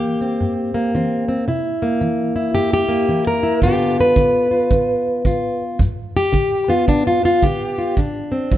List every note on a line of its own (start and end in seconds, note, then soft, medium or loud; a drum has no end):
0.00 0.36 E3 medium
0.00 0.73 A#3 soft
0.00 1.30 G4 loud
0.21 0.94 C4 soft
0.41 0.90 G2 medium
0.74 1.45 A#3 soft
0.95 1.44 E3 medium
0.95 1.27 C4 soft
1.29 1.46 C4 soft
1.48 1.97 C3 medium
1.48 2.35 E4 medium
1.82 2.87 A#3 medium
2.01 2.51 E3 medium
2.36 3.08 E4 soft
2.55 3.05 G2 medium
2.55 2.72 G4 loud
2.73 3.27 G4 medium
2.89 3.61 A#3 soft
3.09 3.59 E3 medium
3.09 3.42 E4 soft
3.27 3.63 A#4 loud
3.43 3.61 E4 soft
3.62 4.13 G2 medium
3.62 4.16 D3 medium
3.62 5.78 B3 medium
3.62 4.51 F4 medium
3.62 3.99 G4 loud
3.62 kick medium
4.01 5.62 B4 medium
4.16 4.67 D3 medium
4.16 kick medium
4.51 5.25 F4 soft
4.71 5.22 D3 medium
4.71 kick medium
5.25 5.75 D3 medium
5.25 5.78 F4 soft
5.25 kick medium
5.79 6.30 G2 medium
5.79 kick medium
6.17 6.71 G4 loud
6.32 6.84 D3 medium
6.32 kick medium
6.68 7.22 B3 soft
6.68 6.88 F4 loud
6.88 7.39 D3 medium
6.88 7.07 D4 medium
6.88 kick medium
7.07 7.24 F4 medium
7.23 7.95 B3 soft
7.23 7.43 F4 medium
7.43 7.94 D3 medium
7.43 7.98 G4 loud
7.43 kick medium
7.78 7.96 F4 soft
7.97 8.48 D3 medium
7.97 8.58 D4 medium
7.97 kick medium
8.32 8.58 C4 soft
8.52 8.58 F#3 medium
8.52 kick medium